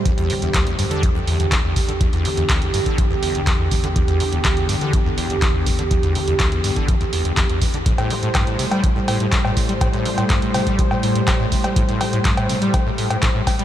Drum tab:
HH |xxoxxxoxx-oxx-ox|xxoxxxoxx-oxx-ox|xxoxxxoxx-oxx-ox|xxoxxxoxxxoxxxox|
CB |----------------|----------------|----------------|----------------|
CP |----x-------x---|----x-------x---|----x-------x---|----x-------x---|
BD |o---o---o---o-o-|o---o--oo---o-o-|o---o---o---o-o-|o---o--oo---o-o-|

HH |xxoxxxoxx-oxx-ox|xxoxxxoxx-oxx-ox|xxoxxxoxx-oxx-ox|
CB |-x--x--x--x--x--|x--x--x--x--x--x|--x--x--x--x--x-|
CP |----x-------x---|----x-------x---|----x-------x---|
BD |o---o---o---o-o-|o---o--oo---o-o-|o---o---o---o-o-|